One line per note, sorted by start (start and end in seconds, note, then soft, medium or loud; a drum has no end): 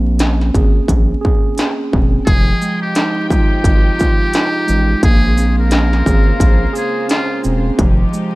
0.00 0.51 A#1 loud
0.00 1.24 A#3 medium
0.00 1.58 C4 medium
0.19 1.55 C#4 medium
0.19 snare loud
0.19 closed hi-hat medium
0.41 snare soft
0.55 0.81 G#1 loud
0.55 1.20 G#4 medium
0.55 kick medium
0.55 closed hi-hat medium
0.88 1.15 A#1 medium
0.88 kick medium
0.88 closed hi-hat medium
1.21 2.26 G#4 medium
1.21 kick medium
1.56 2.26 C#4 medium
1.56 snare loud
1.56 closed hi-hat medium
1.92 2.19 E1 medium
1.92 2.27 C4 medium
1.92 kick medium
2.26 2.53 F1 loud
2.26 5.00 C3 medium
2.26 4.00 F3 medium
2.26 5.00 F3 medium
2.26 8.35 G#3 medium
2.26 5.00 D#4 medium
2.26 2.78 G#4 loud
2.26 5.00 G5 medium
2.26 kick loud
2.26 closed hi-hat medium
2.62 4.34 G#3 medium
2.62 shaker soft
2.82 3.27 G4 medium
2.95 4.34 D#4 medium
2.95 snare loud
2.95 closed hi-hat medium
3.30 3.98 F4 medium
3.30 4.99 G4 medium
3.30 kick loud
3.30 shaker medium
3.64 3.91 G#1 loud
3.64 kick loud
3.64 closed hi-hat medium
3.99 5.03 F4 medium
3.99 kick medium
3.99 shaker soft
4.33 5.04 D#4 medium
4.33 snare loud
4.33 closed hi-hat medium
4.67 4.95 A1 medium
4.67 5.02 G#3 medium
4.67 shaker medium
5.03 6.03 A#1 loud
5.03 7.76 C#3 medium
5.03 7.76 A#3 medium
5.03 6.76 A#3 loud
5.03 7.76 F4 medium
5.03 5.55 G#4 loud
5.03 7.76 C5 medium
5.03 kick loud
5.03 closed hi-hat medium
5.37 7.10 C4 medium
5.37 shaker medium
5.59 6.72 A#4 medium
5.71 7.07 C#4 medium
5.71 snare loud
5.71 closed hi-hat medium
5.93 snare soft
6.06 6.33 G#1 loud
6.06 6.72 G#4 medium
6.06 kick medium
6.06 shaker medium
6.40 6.67 A#1 medium
6.40 kick medium
6.40 closed hi-hat medium
6.73 7.78 G#4 medium
6.73 7.07 G#4 medium
6.73 shaker soft
7.08 7.78 C#4 medium
7.08 7.41 F4 medium
7.08 snare loud
7.08 closed hi-hat medium
7.44 7.71 E1 medium
7.44 7.79 C4 medium
7.44 shaker medium
7.78 8.05 F1 loud
7.78 8.35 C3 medium
7.78 8.35 F3 medium
7.78 8.35 D#4 medium
7.78 8.35 G4 medium
7.78 kick loud
7.78 closed hi-hat medium
8.13 8.35 G#3 medium
8.13 shaker soft